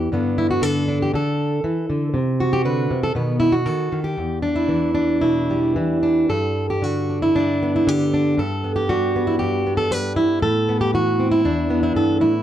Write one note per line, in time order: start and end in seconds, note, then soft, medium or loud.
0.00 0.11 E2 medium
0.12 1.10 G2 medium
0.12 0.61 D3 soft
0.12 1.11 B3 soft
0.12 0.87 D4 soft
0.38 0.50 E4 medium
0.50 0.63 F#4 medium
0.62 1.12 D3 medium
0.62 1.01 A4 medium
0.88 1.10 D4 soft
1.02 1.14 G4 medium
1.13 1.63 D3 medium
1.13 2.16 A4 medium
1.64 1.89 E3 medium
1.90 2.15 D3 medium
2.14 2.90 C3 medium
2.40 3.04 F#4 medium
2.53 2.65 G4 medium
2.65 2.91 D3 medium
2.65 3.03 B4 medium
2.91 3.15 C3 medium
3.04 3.16 A4 medium
3.15 3.67 B2 medium
3.15 3.65 D#3 soft
3.15 3.52 B3 soft
3.15 3.39 B4 soft
3.40 3.54 E4 medium
3.52 4.04 F#4 medium
3.66 3.91 D#3 medium
3.66 4.18 A4 medium
3.92 4.15 D#3 soft
4.04 4.42 G4 medium
4.17 6.29 E2 medium
4.42 4.93 D4 medium
4.56 5.20 E4 medium
4.69 5.75 E3 medium
4.95 6.02 D4 medium
5.21 5.77 B2 medium
5.21 6.29 E4 medium
5.50 7.62 G3 soft
5.76 6.27 E3 medium
6.03 6.30 D4 medium
6.29 7.35 G2 medium
6.29 6.70 A4 medium
6.70 6.84 G4 medium
6.82 7.85 D3 medium
6.82 7.22 F#4 medium
7.09 7.34 D4 soft
7.22 7.74 E4 medium
7.35 8.35 G2 medium
7.35 8.12 D4 medium
7.62 8.42 B3 soft
7.76 7.88 E4 medium
7.87 8.38 D3 medium
7.87 8.39 G4 medium
8.13 8.39 D4 medium
8.37 9.40 G2 medium
8.37 8.75 A4 loud
8.64 9.15 B3 soft
8.76 9.27 G4 medium
8.89 9.90 G3 medium
8.89 9.78 F#4 medium
9.16 9.66 B3 soft
9.27 9.39 E4 medium
9.39 10.39 G2 medium
9.39 9.77 G4 medium
9.67 10.45 B3 soft
9.77 9.92 A4 medium
9.91 10.39 G3 medium
9.91 10.16 B4 medium
10.16 10.42 E4 medium
10.42 11.44 A2 medium
10.42 10.80 A4 loud
10.69 11.70 B3 soft
10.81 10.93 G4 medium
10.94 12.43 E3 medium
10.94 11.31 F#4 medium
11.20 11.44 C4 soft
11.32 11.82 E4 medium
11.45 11.95 E2 medium
11.45 12.33 D4 medium
11.70 12.43 B3 medium
11.83 11.95 E4 medium
11.95 12.20 G2 medium
11.95 12.21 A4 loud
12.20 12.43 A2 medium
12.20 12.43 E4 medium